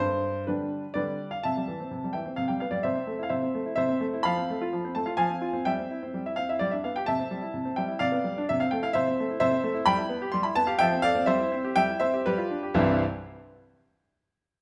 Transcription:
0.00 0.46 G2 medium
0.00 0.43 C5 loud
0.47 0.83 D3 soft
0.47 0.83 G3 soft
0.47 0.83 D4 medium
0.47 0.94 B4 medium
0.94 1.31 D3 medium
0.94 1.31 G3 medium
0.94 1.31 D4 medium
0.94 1.30 B4 medium
0.94 1.28 D5 medium
1.31 1.44 F5 medium
1.43 1.56 C3 medium
1.43 2.12 E5 medium
1.43 2.15 A5 medium
1.57 1.69 G3 soft
1.68 1.81 E3 soft
1.80 1.93 C4 soft
1.91 2.03 C3 soft
2.04 2.16 G3 soft
2.13 2.27 E3 soft
2.13 2.36 E5 soft
2.13 2.35 G5 medium
2.26 2.38 C4 soft
2.36 2.49 C3 medium
2.36 2.49 F5 medium
2.48 2.62 G3 soft
2.48 2.61 G5 medium
2.60 2.74 B3 soft
2.60 2.73 F5 medium
2.71 2.84 G3 medium
2.71 2.84 D5 medium
2.83 2.96 C3 medium
2.83 3.22 C5 medium
2.83 3.20 E5 medium
2.95 3.08 C4 medium
3.07 3.20 A3 soft
3.19 3.32 E4 medium
3.19 3.31 F5 medium
3.29 3.42 C3 medium
3.29 3.74 C5 medium
3.29 3.73 E5 medium
3.43 3.55 C4 soft
3.55 3.67 A3 medium
3.66 3.78 E4 medium
3.76 3.89 C3 medium
3.76 4.22 C5 medium
3.76 4.05 E5 medium
3.89 4.02 C4 medium
4.01 4.13 A3 medium
4.14 4.25 E4 medium
4.23 4.36 F3 medium
4.23 4.91 F5 medium
4.23 4.94 B5 loud
4.37 4.49 C4 medium
4.50 4.62 A3 medium
4.61 4.73 F4 medium
4.73 4.84 F3 medium
4.85 4.96 C4 medium
4.95 5.08 A3 medium
4.95 5.07 A5 medium
5.06 5.18 F4 soft
5.06 5.16 F5 medium
5.17 5.29 F3 medium
5.17 5.62 F5 medium
5.17 5.65 G#5 loud
5.29 5.42 C4 medium
5.42 5.54 F4 medium
5.53 5.65 C4 medium
5.65 5.77 G3 medium
5.65 6.22 E5 medium
5.65 6.21 G5 medium
5.79 5.91 C4 soft
5.90 6.02 E4 soft
6.03 6.15 C4 medium
6.14 6.25 G3 medium
6.26 6.38 E4 soft
6.26 6.38 E5 medium
6.36 6.50 C4 soft
6.36 6.48 F5 medium
6.49 6.61 E4 soft
6.49 6.61 E5 medium
6.59 6.72 G3 medium
6.59 6.72 D5 medium
6.71 6.85 D4 soft
6.71 6.84 E5 medium
6.84 6.97 B3 soft
6.84 6.96 F5 medium
6.96 7.09 G4 medium
6.96 7.08 G5 medium
7.06 7.19 C3 medium
7.06 7.74 E5 medium
7.06 7.78 A5 medium
7.20 7.32 C4 medium
7.31 7.44 G3 medium
7.42 7.55 E4 medium
7.54 7.66 C3 medium
7.65 7.78 C4 soft
7.76 7.91 G3 medium
7.76 8.00 E5 medium
7.76 7.98 G5 medium
7.88 8.01 E4 medium
7.99 8.12 C3 medium
7.99 8.44 D5 medium
7.99 8.43 F5 medium
8.12 8.25 B3 medium
8.24 8.37 G3 medium
8.38 8.49 D4 medium
8.49 8.61 C3 medium
8.49 8.60 E5 loud
8.60 8.73 C4 medium
8.60 8.72 F5 medium
8.71 8.84 A3 medium
8.71 8.83 G5 medium
8.83 8.96 E4 medium
8.83 8.95 F5 medium
8.93 9.06 C3 medium
8.93 9.38 C5 medium
8.93 9.36 E5 loud
9.08 9.19 C4 medium
9.20 9.31 A3 medium
9.31 9.42 E4 medium
9.40 9.52 C3 medium
9.40 9.84 C5 medium
9.40 9.83 E5 loud
9.51 9.64 C4 medium
9.64 9.76 A3 medium
9.74 9.87 E4 medium
9.86 9.98 G3 medium
9.86 10.30 G5 medium
9.86 10.29 B5 loud
9.98 10.11 E4 medium
10.09 10.22 B3 medium
10.22 10.34 G4 medium
10.32 10.45 G3 medium
10.32 10.44 C6 medium
10.43 10.57 E4 medium
10.43 10.56 B5 medium
10.55 10.69 B3 medium
10.55 10.68 A5 loud
10.67 10.80 G4 medium
10.67 10.80 F5 medium
10.79 10.92 F3 medium
10.79 11.02 E5 medium
10.79 11.03 G5 loud
10.93 11.05 C4 medium
11.02 11.16 A4 medium
11.02 11.26 D5 medium
11.02 11.24 F5 loud
11.15 11.27 C4 medium
11.26 11.39 G3 medium
11.26 11.72 C5 medium
11.26 11.75 E5 loud
11.40 11.53 E4 medium
11.52 11.65 C4 medium
11.64 11.77 G4 medium
11.76 11.88 G3 medium
11.76 11.98 E5 medium
11.76 12.00 G5 loud
11.88 12.01 E4 medium
12.00 12.13 C4 medium
12.00 12.23 C5 medium
12.00 12.25 E5 loud
12.14 12.26 G4 medium
12.26 12.38 G3 medium
12.26 12.61 G4 medium
12.26 12.71 B4 loud
12.38 12.51 F4 medium
12.50 12.63 D4 medium
12.63 12.75 G4 medium
12.74 13.02 C2 loud
12.74 13.02 G2 medium
12.74 13.02 E3 loud
12.74 13.02 G3 medium
12.74 13.02 C4 medium
12.74 13.02 E4 medium
12.74 13.02 C5 medium

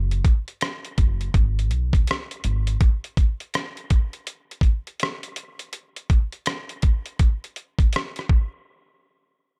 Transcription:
0.00 0.19 F#1 loud
0.11 closed hi-hat soft
0.25 kick medium
0.25 closed hi-hat medium
0.48 closed hi-hat soft
0.61 cross-stick loud
0.61 closed hi-hat medium
0.85 closed hi-hat soft
0.98 1.28 F#1 medium
0.98 kick medium
0.98 closed hi-hat medium
1.21 closed hi-hat soft
1.34 1.72 G#1 loud
1.34 kick medium
1.34 closed hi-hat medium
1.59 closed hi-hat soft
1.71 2.02 B1 loud
1.71 closed hi-hat medium
1.93 kick medium
1.93 closed hi-hat soft
2.07 cross-stick loud
2.07 closed hi-hat medium
2.31 closed hi-hat soft
2.44 2.75 G#1 medium
2.44 closed hi-hat medium
2.67 closed hi-hat soft
2.81 kick loud
2.81 closed hi-hat medium
3.04 closed hi-hat soft
3.17 kick medium
3.17 closed hi-hat medium
3.40 closed hi-hat soft
3.54 cross-stick loud
3.54 closed hi-hat medium
3.77 closed hi-hat soft
3.90 kick medium
3.90 closed hi-hat medium
4.13 closed hi-hat soft
4.27 closed hi-hat medium
4.51 closed hi-hat soft
4.61 kick loud
4.61 closed hi-hat medium
4.87 closed hi-hat soft
5.00 cross-stick loud
5.00 closed hi-hat medium
5.23 closed hi-hat soft
5.36 closed hi-hat medium
5.59 closed hi-hat soft
5.73 closed hi-hat medium
5.96 closed hi-hat soft
6.10 kick medium
6.10 closed hi-hat medium
6.32 closed hi-hat soft
6.46 cross-stick loud
6.46 closed hi-hat medium
6.69 closed hi-hat soft
6.82 kick medium
6.82 closed hi-hat medium
7.06 closed hi-hat soft
7.19 kick medium
7.19 closed hi-hat medium
7.44 closed hi-hat soft
7.56 closed hi-hat medium
7.79 kick medium
7.79 closed hi-hat soft
7.93 cross-stick loud
7.93 closed hi-hat medium
8.16 cross-stick soft
8.16 closed hi-hat soft
8.29 kick loud

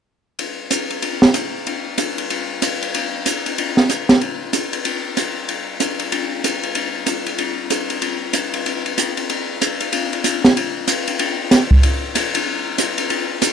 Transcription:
0.39 ride soft
0.71 hi-hat pedal soft
0.71 ride soft
0.90 ride soft
1.02 ride soft
1.22 snare soft
1.34 hi-hat pedal soft
1.34 ride soft
1.67 ride soft
1.98 hi-hat pedal medium
1.98 ride medium
2.18 ride soft
2.30 ride soft
2.62 hi-hat pedal soft
2.62 ride medium
2.82 ride soft
2.94 ride soft
3.26 hi-hat pedal soft
3.26 ride soft
3.46 ride soft
3.58 ride soft
3.77 snare soft
3.89 hi-hat pedal soft
3.89 ride soft
4.09 snare soft
4.09 ride soft
4.21 ride soft
4.53 hi-hat pedal soft
4.53 ride soft
4.73 ride soft
4.85 ride soft
5.17 hi-hat pedal soft
5.17 ride soft
5.48 ride soft
5.80 hi-hat pedal soft
5.80 ride soft
5.99 ride soft
6.12 ride soft
6.44 hi-hat pedal soft
6.44 ride soft
6.63 ride soft
6.75 ride soft
7.06 hi-hat pedal soft
7.06 ride soft
7.26 ride soft
7.38 ride soft
7.70 hi-hat pedal soft
7.70 ride soft
7.90 ride soft
8.02 ride soft
8.33 hi-hat pedal soft
8.33 ride soft
8.54 ride soft
8.66 ride soft
8.86 ride soft
8.98 hi-hat pedal soft
8.98 ride soft
9.17 ride soft
9.29 ride soft
9.61 hi-hat pedal soft
9.61 ride soft
9.80 ride soft
9.92 ride soft
10.13 ride soft
10.24 hi-hat pedal soft
10.24 ride soft
10.45 snare soft
10.45 ride soft
10.57 ride soft
10.87 hi-hat pedal soft
10.87 ride medium
11.07 ride soft
11.19 ride soft
11.51 snare soft
11.51 hi-hat pedal soft
11.51 ride soft
11.71 kick soft
11.83 ride soft
12.15 hi-hat pedal soft
12.15 ride medium
12.35 ride medium
12.78 hi-hat pedal soft
12.78 ride medium
12.98 ride soft
13.10 ride soft
13.42 hi-hat pedal medium
13.42 ride medium

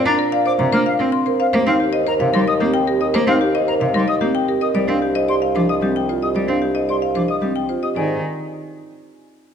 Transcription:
0.00 1.39 A#2 medium
0.06 0.16 D4 medium
0.06 0.23 D4 medium
0.06 0.23 A#5 medium
0.06 0.12 A#5 medium
0.19 0.37 A#4 medium
0.32 0.50 D5 medium
0.32 0.50 F5 loud
0.46 0.64 C5 medium
0.46 0.63 D5 medium
0.46 0.52 D6 medium
0.59 0.69 C3 medium
0.59 0.77 A#5 medium
0.72 0.83 A#3 medium
0.72 0.90 D4 medium
0.72 0.90 C5 medium
0.72 0.79 F6 medium
0.86 1.04 F5 medium
0.86 0.93 F5 medium
0.99 1.10 C4 medium
0.99 1.17 C4 medium
0.99 1.17 A#4 medium
1.12 1.30 C6 medium
1.26 1.44 A#4 medium
1.26 1.44 C5 medium
1.40 1.57 C5 medium
1.40 1.57 F5 medium
1.40 1.46 F5 medium
1.53 4.60 D#2 medium
1.53 1.64 A#3 medium
1.53 1.71 C5 medium
1.67 1.77 C4 medium
1.67 1.84 D#4 medium
1.67 1.84 F5 medium
1.67 1.73 F5 medium
1.80 1.98 G4 medium
1.93 2.11 C5 medium
1.93 2.11 D#5 medium
2.07 2.24 A#4 medium
2.07 2.24 C5 medium
2.07 2.13 A#5 loud
2.20 2.30 C3 medium
2.20 2.38 F5 medium
2.33 2.44 G3 loud
2.33 2.51 D#4 medium
2.33 2.51 A#4 medium
2.33 2.40 C6 medium
2.47 2.65 D#5 medium
2.47 2.53 D#6 medium
2.60 2.70 A#3 medium
2.60 2.78 C4 medium
2.60 2.78 G4 medium
2.74 2.91 G5 loud
2.87 3.05 G4 medium
2.87 3.05 A#4 medium
3.01 3.18 A#4 medium
3.01 3.18 D#5 medium
3.01 3.07 D#6 medium
3.14 3.24 A#3 medium
3.14 3.31 C5 medium
3.27 3.37 C4 medium
3.27 3.45 D#4 medium
3.27 3.45 F5 medium
3.27 3.34 F5 medium
3.41 3.58 G4 medium
3.55 3.72 C5 medium
3.55 3.72 D#5 medium
3.68 3.85 A#4 medium
3.68 3.85 C5 medium
3.68 3.74 A#5 medium
3.81 3.91 C3 medium
3.81 3.98 F5 medium
3.94 4.04 G3 loud
3.94 4.12 D#4 medium
3.94 4.12 A#4 medium
3.94 4.01 C6 medium
4.08 4.25 D#5 medium
4.08 4.14 D#6 medium
4.21 4.31 A#3 medium
4.21 4.39 C4 medium
4.21 4.39 G4 medium
4.35 4.52 G5 medium
4.48 4.66 G4 medium
4.48 4.66 A#4 medium
4.61 4.79 A#4 medium
4.61 4.79 D#5 medium
4.61 4.68 D#6 medium
4.75 7.81 C2 medium
4.75 4.85 G3 medium
4.75 4.92 D5 medium
4.88 4.98 C4 medium
4.88 5.06 D4 medium
4.88 5.06 F5 medium
5.02 5.19 G4 medium
5.15 5.32 C5 medium
5.15 5.32 D#5 medium
5.28 5.46 G4 medium
5.28 5.46 D5 medium
5.28 5.35 C6 medium
5.42 5.59 F5 medium
5.55 5.65 F3 medium
5.55 5.73 D4 medium
5.55 5.73 C5 medium
5.55 5.62 D6 medium
5.69 5.86 D#5 medium
5.69 5.75 D#6 medium
5.82 5.92 G3 medium
5.82 5.99 C4 medium
5.82 5.99 G4 medium
5.96 6.13 G5 medium
6.09 6.26 F4 medium
6.09 6.26 C5 medium
6.22 6.40 G4 medium
6.22 6.40 D#5 medium
6.22 6.29 D#6 medium
6.35 6.45 G3 medium
6.35 6.53 D5 medium
6.48 6.59 C4 medium
6.48 6.66 D4 medium
6.48 6.66 F5 medium
6.62 6.79 G4 medium
6.75 6.93 C5 medium
6.75 6.93 D#5 medium
6.89 7.07 G4 medium
6.89 7.06 D5 medium
6.89 6.96 C6 medium
7.02 7.20 F5 medium
7.15 7.25 F3 medium
7.15 7.33 D4 medium
7.15 7.33 C5 medium
7.15 7.22 D6 medium
7.28 7.46 D#5 medium
7.28 7.36 D#6 medium
7.42 7.52 G3 medium
7.42 7.60 C4 medium
7.42 7.60 G4 medium
7.56 7.73 G5 medium
7.69 7.87 F4 medium
7.69 7.87 C5 medium
7.83 8.00 G4 medium
7.83 8.00 D#5 medium
7.83 7.89 D#6 medium
7.96 8.21 G#2 medium
7.96 8.21 D#3 medium
7.96 8.21 D#4 medium
7.96 8.21 D5 medium
7.96 8.21 G#5 medium

